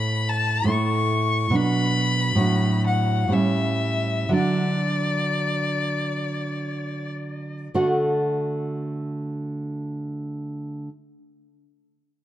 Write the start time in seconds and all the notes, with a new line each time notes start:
Already playing: A2 A3 E4 B5
0.29 A5
0.64 A2 A3
0.69 E4 C#6
1.50 B2 F#3 D4
1.55 B5
2.35 A2 F#3
2.40 D4
2.87 F#5
3.28 A2 G3
3.32 C#4 E5
4.29 D3 F#3
4.33 D4 D5
7.74 D3 A3 F#4 A4 D5 F#5